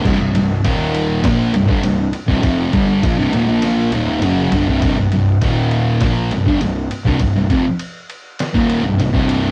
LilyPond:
<<
  \new Staff \with { instrumentName = "Distorted electric guitar" } { \clef bass \time 4/4 \key c \minor \tempo 4 = 101 <c, g,>16 <c, g,>16 <c, g,>8 <ees, bes, ees>4 <bes, f bes>8 <c, g,>16 <g, d>16 <c, g,>8 r16 <c, g,>16 | <f, c f>8 <g, d g>8 <bes, f>16 <c, g,>16 <ees, bes,>16 <bes, f bes>8. <ees, bes, ees>8 <fis, des fis>8 <g, d>16 <c, g,>16 | <c, g,>16 <c, g,>16 <c, g,>8 <ees, bes, ees>4 <bes, f bes>8 <c, g,>16 <g, d>16 <c, g,>8 r16 <c, g,>16 | <c, g,>16 <c, g,>16 <f, c>16 r4. <ees, bes, ees>8 <c, g,>16 <c, g,>16 <c, g, c>8. | }
  \new Staff \with { instrumentName = "Fingered electric bass" } { \clef bass \time 4/4 \key c \minor c,,16 c,,16 c,,8 ees,,4 bes,,8 c,,16 g,,16 c,,8 r16 c,,16 | f,,8 g,,8 bes,,16 c,,16 ees,,16 bes,,8. ees,,8 fis,,8 g,,16 c,,16 | c,,16 c,,16 c,,8 ees,,4 bes,,8 c,,16 g,,16 c,,8 r16 c,,16 | c,,16 c,,16 f,,16 r4. ees,,8 c,,16 c,,16 c,,8. | }
  \new DrumStaff \with { instrumentName = "Drums" } \drummode { \time 4/4 <cymc bd>8 cymr8 <bd cymr>8 cymr8 <bd cymr sn>8 cymr16 bd16 cymr8 cymr16 bd16 | <bd cymr>8 <bd cymr>8 <bd cymr>8 cymr8 <cymr sn>8 <cymr tommh>16 tommh16 <cymr toml>8 <cymr tomfh>16 tomfh16 | <bd cymr>8 cymr8 <bd cymr>8 cymr8 <bd cymr sn>8 cymr16 bd16 cymr8 cymr16 bd16 | <bd cymr>8 <bd cymr>8 cymr8 cymr8 <cymr sn>16 bd16 cymr8 cymr16 bd16 cymr8 | }
>>